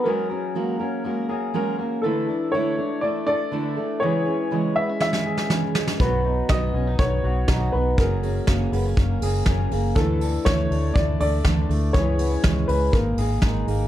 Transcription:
<<
  \new Staff \with { instrumentName = "Upright piano" } { \time 4/4 \key fis \mixolydian \tempo 4 = 121 ais'2. r4 | a'4 cis''4 d''8 d''4. | cis''4. e''8 e''4 r4 | b'4 dis''4 cis''4. b'8 |
ais'2. r4 | a'4 cis''4 d''8 d''4. | cis''4. b'8 ais'4 r4 | }
  \new Staff \with { instrumentName = "Clean electric guitar" } { \time 4/4 \key fis \mixolydian <fis gis'>8 cis'8 ais8 cis'8 ais8 gis'8 cis'8 ais8 | <e a'>8 d'8 a8 d'8 a8 a'8 d'8 a8 | <e gis'>8 cis'8 gis8 b16 cis'16 gis8 gis'8 cis'8 gis8 | <fis fis'>8 dis'8 b8 cis'16 dis'16 b8 fis'8 dis'8 b8 |
<fis gis'>8 cis'8 ais8 b16 cis'16 ais8 gis'8 cis'8 ais8 | <e a'>8 d'8 a8 d'8 a8 a'8 d'8 a8 | <e gis'>8 b16 cis'16 gis8 cis'8 ais8 gis'8 dis'8 ais8 | }
  \new Staff \with { instrumentName = "Steel-string acoustic guitar" } { \time 4/4 \key fis \mixolydian <fis gis cis' fis' ais'>8 <cis' fis' ais'>8 <fis gis cis' fis' ais'>8 <cis' fis' ais'>8 <gis cis' fis' ais'>8 <cis' fis' ais'>8 <fis gis cis' fis' ais'>8 <cis' fis' ais'>8 | <d a d' e' a'>8 <d' e' a'>8 <d a d' e' a'>8 <d' e' a'>8 <a d' e' a'>8 <d' e' a'>8 <d a d' e' a'>8 <d' e' a'>8 | <cis e gis cis' gis'>8 <gis cis' gis'>8 <cis e gis cis' gis'>8 <gis cis' gis'>8 <e gis cis' gis'>8 <gis cis' gis'>8 <cis e gis cis' gis'>8 <gis cis' gis'>8 | <b, fis b dis' fis'>8 <b dis' fis'>8 <b, fis b dis' fis'>8 <b dis' fis'>8 <fis b dis' fis'>8 <b dis' fis'>8 <b, fis b dis' fis'>8 <b dis' fis'>8 |
<fis ais cis' gis'>8 <ais cis' gis'>8 <fis ais cis' gis'>8 <ais cis' gis'>8 <fis ais cis' gis'>8 <ais cis' gis'>8 <fis ais cis' gis'>8 <ais cis' gis'>8 | <d e a d' a'>8 <a d' a'>8 <d e a d' a'>8 <a d' a'>8 <e a d' a'>8 <a d' a'>8 <d e a d' a'>8 <a d' a'>8 | <cis e gis cis' gis'>8 <gis cis' gis'>8 <cis e gis cis' gis'>8 <gis cis' gis'>8 <gis ais dis' gis'>8 <ais dis' gis'>8 <gis ais dis' gis'>8 <ais dis' gis'>8 | }
  \new Staff \with { instrumentName = "Fingered electric bass" } { \clef bass \time 4/4 \key fis \mixolydian r1 | r1 | r1 | b,,4 b,,8 b,,8 b,,8 b,,8 b,,8 b,,8 |
fis,,4 fis,,8 fis,,8 fis,,8 fis,,8 fis,,8 fis,,8 | d,4 d,8 d,8 d,8 d,8 d,8 d,8 | cis,4 cis,8 cis,8 gis,,8 gis,,8 gis,,8 gis,,8 | }
  \new DrumStaff \with { instrumentName = "Drums" } \drummode { \time 4/4 r4 r4 r4 r4 | r4 r4 r4 r4 | r4 r4 sn16 sn8 sn16 sn8 sn16 sn16 | <hh bd>4 <hh bd sn>4 <hh bd>4 <hh bd sn>4 |
<hh bd>8 hho8 <hh bd sn>8 hho8 <hh bd>8 hho8 <hh bd sn>8 hho8 | <hh bd>8 hho8 <hh bd sn>8 hho8 <hh bd>8 hho8 <hh bd sn>8 hho8 | <hh bd>8 hho8 <hh bd sn>8 hho8 <hh bd>8 hho8 <hh bd sn>8 hho8 | }
>>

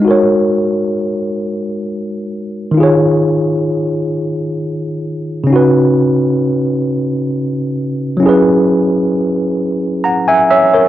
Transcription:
\new Staff \with { instrumentName = "Tine electric piano" } { \time 6/8 \key des \major \tempo 4. = 44 << { r2. | r2. | r2. | r2 <ges'' bes''>16 <fes'' aes''>16 <des'' fes''>16 <bes' des''>16 | } \\ { <aes ees' ges' bes' des''>2. | <ees ees' f' aes' des''>2. | <des des' ees' ges' ces''>2. | <ges des' fes' aes' ces''>2. | } >> }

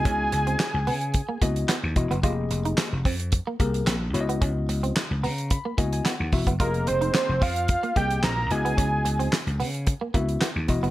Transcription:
<<
  \new Staff \with { instrumentName = "Analog synth lead" } { \time 4/4 \key des \lydian \tempo 4 = 110 aes''2~ aes''8 r4. | r1 | r1 | bes'8 c''8 c''8 f''4 g''8 bes''8 aes''8~ |
aes''4 r2. | }
  \new Staff \with { instrumentName = "Tine electric piano" } { \time 4/4 \key des \lydian << { r1 | r1 | r4. bes''8 ces'''8 aes''16 aes''16 ges''8 fes''8 | r1 |
r1 | } \\ { <ces' fes' ges' ees''>4 r4. <ces' fes' ges' ees''>8 r8 <ces' fes' ges' ees''>8 | <bes g' aes' ees''>4~ <bes g' aes' ees''>16 r4 r16 <bes g' aes' bes'>8 r8 <ces' fes' ges' des'' ees''>8~ | <ces' fes' ges' des'' ees''>4 r4. <ces' fes' ges' ees''>8 r8 <ces' fes' ges'>8 | <bes g' aes' ees''>4~ <bes g' aes' ees''>16 r4 r16 <bes g' aes' ees''>8 r8 <ces' fes' ges' ees''>8~ |
<ces' fes' ges' ees''>4 r4. <ces' fes' ges' fes''>8 r8 <ces' fes' ges' ees''>8 | } >> }
  \new Staff \with { instrumentName = "Clean electric guitar" } { \time 4/4 \key des \lydian des'16 r8 c'16 r8 ces'16 r8 bes16 bes16 r16 ces'16 r8 ces'16 | f'16 r8 ees'16 r8 c'16 r8 bes16 bes16 r16 c'16 r8 ces'16 | des'16 r8 c'16 r8 ces'16 r8 bes16 bes16 r16 ces'16 r8 ces'16 | f'16 r8 ees'16 r8 c'16 r8 bes16 bes16 r16 c'16 r8 ces'16 |
des'16 r8 c'16 r8 ces'16 r8 bes16 bes16 r16 ces'16 r8 ces'16 | }
  \new Staff \with { instrumentName = "Slap bass" } { \clef bass \time 4/4 \key des \lydian des,8 des,8 r16 des,16 des8. r16 des,8 r16 ees,16 fes,,16 ges,,16 | f,,8 f,,8 r16 f,,16 f,8. r16 c,8 bes,,8 des,8 | des,8 des,8 r16 des,16 des8. r16 des,8 r16 ees,16 fes,,16 ges,,16 | f,,8 f,,8 r16 f,,16 f,8. r16 c,8 bes,,8 des,8 |
des,8 des,8 r16 des,16 des8. r16 des,8 r16 ees,16 fes,,16 ges,,16 | }
  \new DrumStaff \with { instrumentName = "Drums" } \drummode { \time 4/4 <hh bd>8 hh16 hh16 <hc hh sn>8 hho16 hh16 <hh bd>8 <hh bd>16 hh16 <hc hh sn>8 <hh bd>16 hh16 | <hh bd>8 hh16 hh16 <hc hh sn>8 <hho bd>16 hh16 <hh bd>8 <hh bd>16 hh16 <hc hh sn>8 hh16 hh16 | <hh bd>8 hh16 hh16 <hc hh sn>8 hho16 hh16 <hh bd>8 <hh bd>16 hh16 <hc hh sn>8 <hho bd>16 <hh bd>16 | <hh bd>16 hh16 hh16 hh16 <hc hh sn>8 <hho bd>16 hh16 <hh bd>16 hh16 <hh bd>16 hh16 <hc hh sn>8 hh16 hh16 |
<hh bd>8 hh16 hh16 <hc hh sn>16 hh16 hho16 hh16 <hh bd>8 <hh bd>16 hh16 <hc hh sn>8 <hh bd>16 hh16 | }
>>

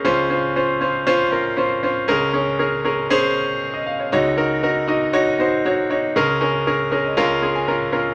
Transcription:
<<
  \new Staff \with { instrumentName = "Grand piano" } { \time 4/4 \key des \major \tempo 4 = 118 << { r1 | r2. r16 ees''16 f''16 des''16~ | des''16 r2. r8. | r4. des''16 ees''16 f''8. aes''16 bes''8 c'''8 | } \\ { <des' f' c''>8 <des' f' c''>8 <des' f' c''>8 <des' f' c''>8 <des' f' c''>8 <des' f' bes'>8 <des' f' c''>8 <des' f' c''>8 | <des' aes' bes'>8 <des' aes' des''>8 <des' aes' bes'>8 <des' aes' bes'>8 <des' aes' c''>8 r4. | <ees' ges' des''>8 <ees' ges' bes'>8 <ees' ges' bes'>8 <ees' ges' ees''>8 <ees' ges' des''>8 <ees' ges' c''>8 <ees' ges' des''>8 <ees' ges' des''>8 | <des' aes' bes'>8 <des' aes' bes'>8 <des' aes' bes'>8 <des' aes' bes'>8 <des' f' bes'>8 <des' f' aes'>8 <des' f' bes'>8 <des' f' bes'>8 | } >> }
  \new Staff \with { instrumentName = "Grand piano" } { \clef bass \time 4/4 \key des \major <des, des>1 | <des, des>1 | <des, des>1 | <des, des>2 <des, des>2 | }
>>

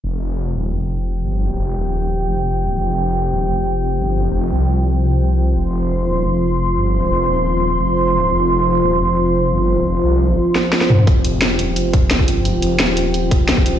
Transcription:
<<
  \new Staff \with { instrumentName = "Analog synth pad" } { \time 4/4 \key c \phrygian \tempo 4 = 174 << { g''1~ | g''1~ | g''1~ | g''1 |
c'''1~ | c'''1~ | c'''1~ | c'''1 |
g''1~ | g''1 | } \\ { <f' c''>1~ | <f' c''>1~ | <f' c''>1~ | <f' c''>1~ |
<f' c''>1~ | <f' c''>1~ | <f' c''>1~ | <f' c''>1~ |
<f' c''>1~ | <f' c''>1 | } >> }
  \new Staff \with { instrumentName = "Detuned saw bass" } { \clef bass \time 4/4 \key c \phrygian f,,4. ees,,8 f,,4. g,,8~ | g,,8 f,,8 ees,,4. f,,4. | f,,4. ees,,8 f,,4. g,,8~ | g,,8 f,,8 c,2. |
f,,4. ees,,8 f,,4. g,,8~ | g,,8 f,,8 ees,,4. f,,4. | f,,4. ees,,8 f,,4. g,,8~ | g,,8 f,,8 c,4 r2 |
f,,4. ees,,8 f,,4. g,,8~ | g,,8 f,,8 ees,,4. f,,4. | }
  \new DrumStaff \with { instrumentName = "Drums" } \drummode { \time 4/4 r4 r4 r4 r4 | r4 r4 r4 r4 | r4 r4 r4 r4 | r4 r4 r4 r4 |
r4 r4 r4 r4 | r4 r4 r4 r4 | r4 r4 r4 r4 | r4 r4 r8 sn8 sn16 sn16 toml16 toml16 |
<hh bd>8 hh8 <hh sn>8 hh8 hh8 <hh bd>8 <hh sn>16 bd16 hh8 | hh8 hh8 <hh sn>8 hh8 hh8 <hh bd>8 <hh sn>16 bd16 hh8 | }
>>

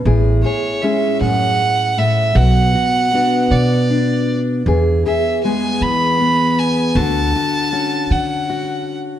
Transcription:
<<
  \new Staff \with { instrumentName = "Fiddle" } { \time 6/8 \key a \major \tempo 4. = 52 r8 cis''8 e''8 fis''4 e''8 | fis''4. d''4 r8 | r8 e''8 gis''8 b''4 gis''8 | a''4. fis''4 r8 | }
  \new Staff \with { instrumentName = "Steel-string acoustic guitar" } { \time 6/8 \key a \major << { gis'8 gis'8 <gis cis' gis'>2 | fis'8 fis'8 <b d' fis'>4 d'4 | gis'8 gis'8 <gis b gis'>4 b4 | fis'8 fis'8 <cis' fis'>4 fis'4 | } \\ { a,4. fis,8 r8 a,8 | b,2. | e,2. | d2. | } >> }
  \new Staff \with { instrumentName = "Upright bass" } { \clef bass \time 6/8 \key a \major a,,8 r4 a,4. | b,,8 r4 b,4. | e,8 r4 e4. | d,8 r4 d4. | }
>>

